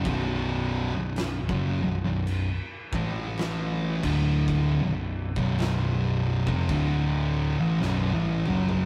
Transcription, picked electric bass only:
X:1
M:4/4
L:1/16
Q:"Swing" 1/4=54
K:Bm
V:1 name="Picked electric bass" clef=bass
B,,,,3 B,,,,2 F,,, B,,,, B,,,,2 z A,,,4 D,,,2- | D,,, B,,,,2 B,,,,4 ^E,,, D,,,3 A,,, B,,,, A,,, F,,,2 |]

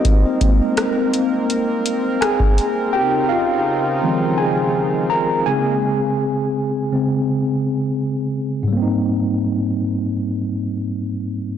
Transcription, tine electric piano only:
X:1
M:4/4
L:1/8
Q:1/4=83
K:Ab
V:1 name="Tine electric piano"
[Ee]6 [Aa]2 | [Gg] [Ff]3 [Aa]2 [Bb] [Aa]- | [Aa]6 z2 | [A,,G,B,CE]8 |]
V:2 name="Tine electric piano" clef=bass
[G,B,C] [A,B,C]6- [A,B,C] | z3 [E,F,A,C]4 [D,A,C]- | [D,A,C]3 [D,A,C] z4 | z8 |]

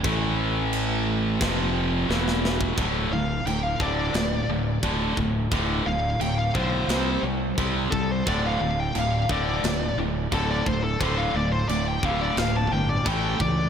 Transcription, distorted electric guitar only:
X:1
M:4/4
L:1/8
Q:1/4=88
K:Dm
V:1 name="Distorted electric guitar" clef=bass
[A,,E,A,]4 [F,,C,F,]2 [E,,=B,,E,]2 | [D,,A,,D,] [D,,A,,] [D,,A,,] [D,,A,,D,] [D,,A,,] [D,,A,,] [D,,A,,D,] [D,,A,,] | [D,,A,,D,] [D,,A,,] [D,,A,,] [D,,A,,D,] [C,G,C] [C,G,] [C,G,C] [C,G,] | [D,,A,,D,] [D,,A,,] [D,,A,,] [D,,A,,D,] [D,,A,,] [D,,A,,] [D,,A,,D,] [D,,A,,] |
[D,,A,,D,] [D,,A,,] [D,,A,,] [D,,A,,D,] [D,,A,,] [D,,A,,] [A,,E,A,] [A,,E,] |]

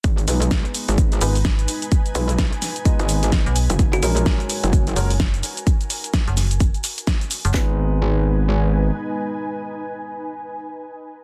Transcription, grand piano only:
X:1
M:4/4
L:1/8
Q:"Swing 16ths" 1/4=128
K:G#m
V:1 name="Grand piano"
z [G,B,DB]4 [G,B,DB] z2 | z [G,B,DB] z2 [G,B,Dd]4 | z [G,CFA]4 [G,CFA] z2 | z8 |
[G,B,DB]8- | [G,B,DB]8 |]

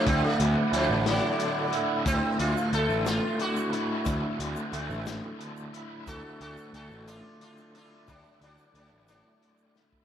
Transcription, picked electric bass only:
X:1
M:6/8
L:1/16
Q:3/8=60
K:D
V:1 name="Picked electric bass" clef=bass
D,, z D,, z D,, A,,,2 z4 z | D,, z D,, z D,, A,,,2 z4 z | D,, z D,, z D,, A,,,2 z4 z | D,, z D,, z D,, A,,,2 z4 z |
D,, z D,, z D,, A,,,2 z4 z |]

